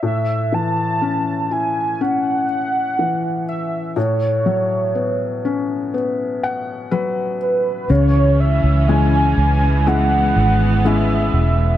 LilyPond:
<<
  \new Staff \with { instrumentName = "Soft synth lead" } { \time 4/4 \key a \major \tempo 4 = 61 e''8 a''4 gis''8 fis''4. e''8 | cis''2 r4. b'8 | cis''8 e''8 gis''4 fis''4 e''4 | }
  \new Staff \with { instrumentName = "Felt piano" } { \time 4/4 \key a \major r1 | r2 r8 fis''8 b'4 | r1 | }
  \new Staff \with { instrumentName = "Felt piano" } { \time 4/4 \key a \major a,8 e8 cis'8 e'8 cis'4 e4 | a,8 fis8 b8 cis'8 b4 fis4 | cis4 <gis cis' e'>4 <gis cis' e'>4 <gis cis' e'>4 | }
  \new Staff \with { instrumentName = "String section" } { \time 4/4 \key a \major << { r1 | r1 | cis'2 b2 | } \\ { r1 | r1 | <e gis>1 | } >> }
  \new Staff \with { instrumentName = "Fingered electric bass" } { \clef bass \time 4/4 \key a \major r1 | r1 | cis,8. cis,8. cis,4 gis,,4 e,,8 | }
>>